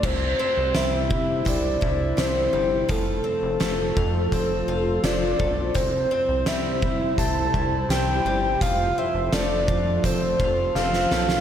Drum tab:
CC |x---------------|----------------|----------------|----------------|
HH |----x---x---x---|x---x---x---x---|x---x---x---x---|x---x---x-------|
SD |----o-------o---|----o-------o---|----o-------o---|----o-------oooo|
BD |o-----o-o-o-----|o-----o-o-----o-|o-----o-o-o-----|o-----o-o-o-----|